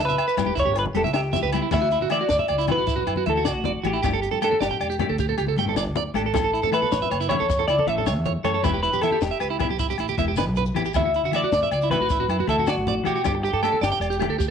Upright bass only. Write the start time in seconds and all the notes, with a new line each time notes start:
0.00 C#2
0.46 E1
0.57 E1
0.66 G1
0.94 E1
1.03 C#2
1.42 C#2
1.71 D2
2.29 D2
2.50 C#2
2.77 A1
3.07 F#2
3.27 D2
3.55 A1
3.84 A1
4.04 G1
4.33 G2
4.60 G1
4.80 E1
5.09 D2
5.38 C#2
5.56 G1
5.85 D2
6.14 G#1
6.35 A1
6.63 A2
6.92 A1
7.11 F#1
7.40 E2
7.67 C#2
7.87 A1
8.16 E2
8.44 F#2
8.64 E1
8.92 E2
9.21 E1
9.41 C#2
9.69 B1
9.98 A1
10.17 E1
10.47 B1
10.95 D2
11.23 D3
11.52 D2
11.71 C#2
12.00 A1
12.28 F#2
12.47 D2
12.76 A1
13.06 B2
13.25 G1
13.53 G2
13.81 G1
14.00 E1
14.28 D2